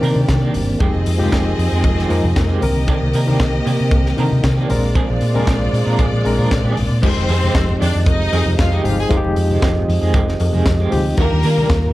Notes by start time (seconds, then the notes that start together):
Already playing: C3 A#3 C4 D4 G4 G#4 A#4 D5
0.00 C3 D#3 A#3 C4 D4 A#4, open hi-hat
0.05 A#4
0.16 C3, muted clean electric guitar stroke, high conga
0.28 C3, muted clean electric guitar stroke, kick, snare, closed hi-hat, cowbell, muted conga, high conga
0.42 D#3 A#3 D4 G4, muted conga
0.54 G1, muted clean electric guitar stroke, open hi-hat, high conga, low conga
0.68 muted clean electric guitar stroke
0.79 F1 D#3 F3 G#3 C4 D#4 F4 G4 G#4 D#5, kick, closed hi-hat, cowbell
0.94 F1, muted clean electric guitar stroke, muted conga
1.06 F2, muted clean electric guitar stroke, open hi-hat
1.18 F3 G#3 C4 D#4 G4, high conga
1.22 D#3
1.32 F1 D#3 G#3 C4 G4, kick, snare, closed hi-hat, cowbell
1.46 muted clean electric guitar stroke
1.58 F2, muted clean electric guitar stroke, open hi-hat
1.71 F2 D#3 G#3 C4 G#4
1.84 F1, muted clean electric guitar stroke, kick, closed hi-hat, cowbell, muted conga, low conga
1.97 D#3 G#3 C4 G4, snare, muted conga
2.09 F2 D#3 F3 G#3 C4 D#4 G4 A#4, open hi-hat
2.24 F2, high conga
2.36 F2, muted clean electric guitar stroke, kick, snare, closed hi-hat, cowbell, muted conga, high conga
2.49 D#3 G#3 C4 G4, muted conga
2.61 C2 C3 D3 D#3 A#3 C4 G4 A#4 D#5, muted clean electric guitar stroke, open hi-hat, high conga, low conga
2.76 muted clean electric guitar stroke
2.87 D#3 A#3 D4 G4, kick, closed hi-hat, cowbell
3.02 C2, muted clean electric guitar stroke, muted conga
3.13 C3 D#3 A#3 D4 A#4, open hi-hat
3.26 D3 D#3 A#3 C4 D4 G4 A#4, high conga
3.40 C2, muted clean electric guitar stroke, kick, snare, closed hi-hat, cowbell
3.54 muted clean electric guitar stroke
3.65 C3 D#3 A#3 D4 G4, open hi-hat
3.80 C3, muted clean electric guitar stroke
3.91 C2, kick, closed hi-hat, cowbell, muted conga, low conga
4.06 muted clean electric guitar stroke, snare, muted conga
4.17 C3 D3 D#3 A#3 C4 D4 A#4, open hi-hat
4.31 C3, muted clean electric guitar stroke, high conga
4.43 C3, muted clean electric guitar stroke, kick, snare, closed hi-hat, cowbell, high conga
4.57 D#3 A#3 D4 G4, muted conga
4.69 A#1 G#3 A#3 C4 D4 F4 G#4 A#4 C5 D5, muted clean electric guitar stroke, open hi-hat, high conga, low conga
4.83 muted clean electric guitar stroke
4.95 F3 C4 D4 G#4, kick, closed hi-hat, cowbell, muted conga
5.09 A#1, muted clean electric guitar stroke, muted conga
5.21 A#2, muted clean electric guitar stroke, open hi-hat
5.34 F3 G#3 C4 D4 G#4 A#4, high conga
5.47 A#1 F3 C4 D4 G#4, kick, snare, closed hi-hat, cowbell
5.60 muted clean electric guitar stroke, low conga
5.73 A#2, muted clean electric guitar stroke, open hi-hat
5.86 A#2 F3 C4 D4 A#4
5.98 A#1 F3 C4 D4 G#4, kick, closed hi-hat, cowbell, muted conga, low conga
6.12 A#2, muted clean electric guitar stroke, muted conga
6.24 A#1 G#3 C4 D4 A#4, muted clean electric guitar stroke, open hi-hat
6.38 A#2 F3 C4 D4 A#4, high conga
6.51 A#1, muted clean electric guitar stroke, kick, snare, closed hi-hat, cowbell, high conga
6.64 A#2 F3 C4 D4 G#4, muted conga
6.76 A#1, muted clean electric guitar stroke, open hi-hat, high conga, low conga
6.90 A#2, muted clean electric guitar stroke
7.02 F1 D#3 F3 G#3 C4 D#4 G4 C5 D#5, kick, crash, cowbell
7.16 F1, muted clean electric guitar stroke, muted conga
7.29 F2 D#3 G#3 C4 G#4, open hi-hat
7.42 D#3 G#3 C4 G4, high conga
7.55 F1, muted clean electric guitar stroke, kick, snare, closed hi-hat, cowbell, muted conga
7.69 muted conga, low conga
7.81 F2 D#3 G#3 C4 D4 G4 D5, open hi-hat
7.95 F2, muted clean electric guitar stroke
8.06 F1 D#4 D#5, kick, closed hi-hat, cowbell, muted conga, low conga
8.32 F2 D#3 G#3 C4 G#4, open hi-hat, cowbell
8.46 F2, muted clean electric guitar stroke, high conga
8.58 F2 F4 F5, muted clean electric guitar stroke, kick, snare, closed hi-hat, cowbell, high conga
8.72 D#3 G#3 C4 D#4 G4 D#5, muted conga
8.83 G1 F3 G#3 C4 D#4 F4 G4 F5, muted clean electric guitar stroke, open hi-hat, high conga, low conga
8.99 G#4 G#5, muted clean electric guitar stroke
9.10 F1 D#3 F3 G#3 C4 D#4 F4 G4, kick, closed hi-hat, cowbell, muted conga
9.17 G4
9.24 F1, muted clean electric guitar stroke, muted conga
9.36 F2, muted clean electric guitar stroke, open hi-hat
9.50 D#3 G#3 C4 G4, high conga
9.62 F1 D#3 G#3 C4 G4, kick, snare, closed hi-hat, cowbell
9.76 muted clean electric guitar stroke, muted conga, low conga
9.88 F2, muted clean electric guitar stroke, open hi-hat
10.01 F2 D#3 G#3 C4 G#4
10.13 F1 D#3 G#3 C4 G4, kick, closed hi-hat, cowbell, low conga
10.27 muted clean electric guitar stroke, snare, muted conga
10.40 F2, muted clean electric guitar stroke, open hi-hat, cowbell
10.53 F2 D#3 G#3 C4 G#4, high conga
10.66 F2, muted clean electric guitar stroke, kick, snare, closed hi-hat, cowbell, muted conga, high conga
10.80 D#3 G#3 C4 G4, muted conga
10.91 D2 F3 G#3 C4 D#4 G4, muted clean electric guitar stroke, open hi-hat, high conga, low conga
11.06 muted clean electric guitar stroke
11.17 D#2 D#3 G3 A#3 D4 F4 F#4 G4 A#4, kick, closed hi-hat, cowbell, muted conga
11.25 G4
11.32 D#2, muted clean electric guitar stroke, muted conga
11.43 D#3 G3 A#3 D4 A#4, open hi-hat
11.58 G3 A#3 D4 G4, high conga
11.70 D#2, muted clean electric guitar stroke, kick, snare, closed hi-hat, cowbell
11.84 muted clean electric guitar stroke, low conga